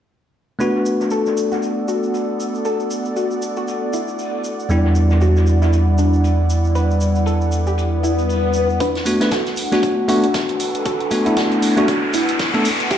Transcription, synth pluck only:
0, 0, Header, 1, 2, 480
1, 0, Start_track
1, 0, Tempo, 512821
1, 561, Time_signature, 4, 2, 24, 8
1, 12146, End_track
2, 0, Start_track
2, 0, Title_t, "Synth pluck"
2, 0, Program_c, 0, 84
2, 562, Note_on_c, 0, 71, 95
2, 976, Note_off_c, 0, 71, 0
2, 1042, Note_on_c, 0, 69, 91
2, 1353, Note_off_c, 0, 69, 0
2, 1421, Note_on_c, 0, 66, 87
2, 1712, Note_off_c, 0, 66, 0
2, 1761, Note_on_c, 0, 66, 88
2, 2401, Note_off_c, 0, 66, 0
2, 2482, Note_on_c, 0, 69, 93
2, 2896, Note_off_c, 0, 69, 0
2, 2962, Note_on_c, 0, 66, 93
2, 3272, Note_off_c, 0, 66, 0
2, 3342, Note_on_c, 0, 66, 87
2, 3633, Note_off_c, 0, 66, 0
2, 3683, Note_on_c, 0, 64, 87
2, 4322, Note_off_c, 0, 64, 0
2, 4401, Note_on_c, 0, 67, 96
2, 4815, Note_off_c, 0, 67, 0
2, 4879, Note_on_c, 0, 66, 93
2, 5191, Note_off_c, 0, 66, 0
2, 5259, Note_on_c, 0, 64, 88
2, 5551, Note_off_c, 0, 64, 0
2, 5601, Note_on_c, 0, 62, 90
2, 6241, Note_off_c, 0, 62, 0
2, 6321, Note_on_c, 0, 71, 94
2, 6735, Note_off_c, 0, 71, 0
2, 6799, Note_on_c, 0, 69, 93
2, 7111, Note_off_c, 0, 69, 0
2, 7179, Note_on_c, 0, 67, 89
2, 7471, Note_off_c, 0, 67, 0
2, 7520, Note_on_c, 0, 64, 92
2, 8160, Note_off_c, 0, 64, 0
2, 8239, Note_on_c, 0, 62, 75
2, 8240, Note_on_c, 0, 71, 94
2, 8654, Note_off_c, 0, 62, 0
2, 8655, Note_off_c, 0, 71, 0
2, 8721, Note_on_c, 0, 66, 76
2, 8721, Note_on_c, 0, 69, 94
2, 9032, Note_off_c, 0, 66, 0
2, 9032, Note_off_c, 0, 69, 0
2, 9100, Note_on_c, 0, 62, 71
2, 9100, Note_on_c, 0, 66, 91
2, 9391, Note_off_c, 0, 62, 0
2, 9391, Note_off_c, 0, 66, 0
2, 9442, Note_on_c, 0, 66, 90
2, 9443, Note_on_c, 0, 62, 74
2, 10081, Note_off_c, 0, 66, 0
2, 10082, Note_off_c, 0, 62, 0
2, 10162, Note_on_c, 0, 69, 95
2, 10163, Note_on_c, 0, 66, 73
2, 10576, Note_off_c, 0, 66, 0
2, 10576, Note_off_c, 0, 69, 0
2, 10642, Note_on_c, 0, 62, 77
2, 10642, Note_on_c, 0, 66, 96
2, 10952, Note_off_c, 0, 62, 0
2, 10953, Note_off_c, 0, 66, 0
2, 11020, Note_on_c, 0, 66, 89
2, 11021, Note_on_c, 0, 62, 73
2, 11311, Note_off_c, 0, 66, 0
2, 11312, Note_off_c, 0, 62, 0
2, 11362, Note_on_c, 0, 59, 73
2, 11362, Note_on_c, 0, 64, 91
2, 12001, Note_off_c, 0, 59, 0
2, 12001, Note_off_c, 0, 64, 0
2, 12080, Note_on_c, 0, 67, 95
2, 12081, Note_on_c, 0, 64, 72
2, 12146, Note_off_c, 0, 64, 0
2, 12146, Note_off_c, 0, 67, 0
2, 12146, End_track
0, 0, End_of_file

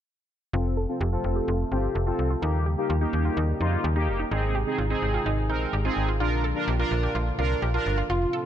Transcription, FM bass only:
0, 0, Header, 1, 2, 480
1, 0, Start_track
1, 0, Tempo, 472441
1, 545, Time_signature, 4, 2, 24, 8
1, 8590, End_track
2, 0, Start_track
2, 0, Title_t, "FM bass"
2, 0, Program_c, 0, 39
2, 543, Note_on_c, 0, 29, 103
2, 880, Note_off_c, 0, 29, 0
2, 1023, Note_on_c, 0, 29, 110
2, 1191, Note_off_c, 0, 29, 0
2, 1262, Note_on_c, 0, 29, 91
2, 1431, Note_off_c, 0, 29, 0
2, 1504, Note_on_c, 0, 29, 100
2, 1672, Note_off_c, 0, 29, 0
2, 1744, Note_on_c, 0, 31, 86
2, 1912, Note_off_c, 0, 31, 0
2, 1985, Note_on_c, 0, 29, 101
2, 2153, Note_off_c, 0, 29, 0
2, 2224, Note_on_c, 0, 36, 85
2, 2393, Note_off_c, 0, 36, 0
2, 2462, Note_on_c, 0, 39, 106
2, 2799, Note_off_c, 0, 39, 0
2, 2943, Note_on_c, 0, 39, 99
2, 3112, Note_off_c, 0, 39, 0
2, 3182, Note_on_c, 0, 39, 93
2, 3351, Note_off_c, 0, 39, 0
2, 3424, Note_on_c, 0, 39, 101
2, 3592, Note_off_c, 0, 39, 0
2, 3663, Note_on_c, 0, 41, 88
2, 3831, Note_off_c, 0, 41, 0
2, 3904, Note_on_c, 0, 39, 104
2, 4142, Note_on_c, 0, 29, 89
2, 4157, Note_off_c, 0, 39, 0
2, 4311, Note_off_c, 0, 29, 0
2, 4383, Note_on_c, 0, 32, 105
2, 4720, Note_off_c, 0, 32, 0
2, 4862, Note_on_c, 0, 32, 102
2, 5031, Note_off_c, 0, 32, 0
2, 5103, Note_on_c, 0, 32, 91
2, 5272, Note_off_c, 0, 32, 0
2, 5343, Note_on_c, 0, 32, 102
2, 5583, Note_on_c, 0, 34, 89
2, 5598, Note_off_c, 0, 32, 0
2, 5752, Note_off_c, 0, 34, 0
2, 5823, Note_on_c, 0, 32, 101
2, 5992, Note_off_c, 0, 32, 0
2, 6062, Note_on_c, 0, 32, 90
2, 6304, Note_on_c, 0, 34, 106
2, 6319, Note_off_c, 0, 32, 0
2, 6640, Note_off_c, 0, 34, 0
2, 6783, Note_on_c, 0, 34, 100
2, 6952, Note_off_c, 0, 34, 0
2, 7023, Note_on_c, 0, 34, 98
2, 7192, Note_off_c, 0, 34, 0
2, 7263, Note_on_c, 0, 34, 99
2, 7432, Note_off_c, 0, 34, 0
2, 7504, Note_on_c, 0, 36, 87
2, 7672, Note_off_c, 0, 36, 0
2, 7746, Note_on_c, 0, 34, 96
2, 7913, Note_off_c, 0, 34, 0
2, 7987, Note_on_c, 0, 31, 97
2, 8154, Note_off_c, 0, 31, 0
2, 8226, Note_on_c, 0, 29, 100
2, 8394, Note_off_c, 0, 29, 0
2, 8590, End_track
0, 0, End_of_file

